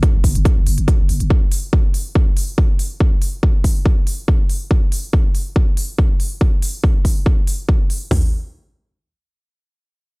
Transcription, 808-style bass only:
0.14 F#1
0.24 F#1
0.35 F#1
0.57 F#1
0.67 F#1
0.78 F#1
0.99 F#1
1.09 F#1
1.20 F#1

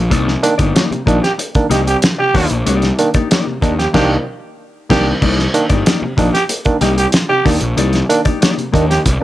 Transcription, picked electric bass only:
Already playing: A#1
0.11 C2
0.59 G1
0.91 muted picked electric bass stroke
1.07 A#1
1.70 C2
2.35 D#2
2.51 A#1
2.67 C2
3.15 muted picked electric bass stroke
3.62 D#2
3.94 C2
4.90 C2
5.22 C2
5.70 G1
6.02 muted picked electric bass stroke
6.18 A#1
6.81 C2
7.46 D#2
7.62 A#1
7.77 C2
8.26 muted picked electric bass stroke
8.74 D#2
9.06 C2

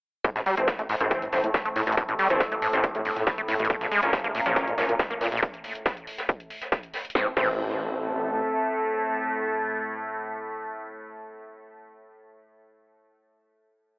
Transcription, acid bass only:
0.25 A2
0.36 A2
0.46 G3
0.79 A3
0.89 A2
1.01 A2
1.11 A1
1.22 A2
1.33 G2
1.54 E3
1.65 A3
1.76 A2
1.87 A2
1.97 A2
2.09 A2
2.19 G3
2.52 A3
2.62 A2
2.73 A2
2.84 A1
2.95 A2
3.05 G2
3.27 E3
3.38 A3
3.49 A2
3.60 A2
3.70 A#2
3.81 A#2
3.92 G#3
4.24 A#3
4.35 A#2
4.46 A#2
4.56 A#1
4.67 A#2
4.78 G#2
4.99 F3
5.11 A#3
5.21 A#2
5.32 A#2
7.15 A2
7.37 A2

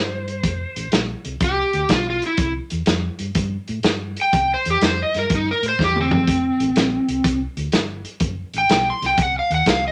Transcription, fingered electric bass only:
Already playing: G2
0.43 F1
0.76 A1
0.92 A#1
1.25 C2
1.41 C2
1.74 D2
1.89 B1
2.38 C2
2.72 E2
2.87 F2
3.20 G2
3.35 G2
3.69 A2
3.84 G2
4.33 C2
4.66 E2
4.82 F2
5.15 G2
5.30 G2
5.63 A2
5.79 E2
6.28 F1
6.60 A1
6.76 A#1
7.08 C2
7.25 C2
7.57 D2
7.73 G1
8.21 F#1
8.54 A1
8.70 B1
9.02 C2
9.18 C2
9.50 D#2
9.67 C2

